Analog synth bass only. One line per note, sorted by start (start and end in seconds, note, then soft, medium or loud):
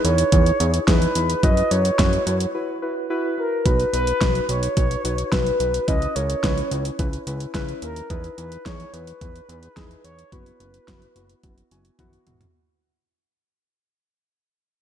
0.05 0.24 E2 loud
0.32 0.52 E2 loud
0.60 0.80 E2 loud
0.88 1.07 E2 loud
1.16 1.35 E2 medium
1.43 1.63 F#2 loud
1.71 1.91 F#2 loud
1.99 2.18 F#2 loud
2.27 2.46 F#2 loud
3.66 3.85 B1 loud
3.93 4.13 B1 loud
4.21 4.41 B1 loud
4.49 4.68 B1 loud
4.77 4.96 B1 loud
5.04 5.24 B1 loud
5.32 5.52 B1 loud
5.60 5.80 B1 medium
5.88 6.07 C#2 loud
6.16 6.35 C#2 loud
6.44 6.63 C#2 loud
6.71 6.91 C#2 loud
6.99 7.19 C#2 loud
7.27 7.46 C#2 loud
7.55 7.74 C#2 loud
7.82 8.02 D#2 loud
8.10 8.30 E2 loud
8.38 8.57 E2 loud
8.66 8.85 E2 loud
8.93 9.13 E2 loud
9.21 9.41 E2 loud
9.49 9.68 E2 loud
9.77 9.96 E2 loud
10.04 10.24 E2 medium
10.32 10.52 F#1 loud
10.60 10.79 F#1 loud
10.88 11.07 F#1 loud
11.16 11.35 F#1 loud
11.44 11.63 F#1 loud
11.71 11.91 F#1 loud
11.99 12.18 F#1 loud
12.27 12.46 E1 medium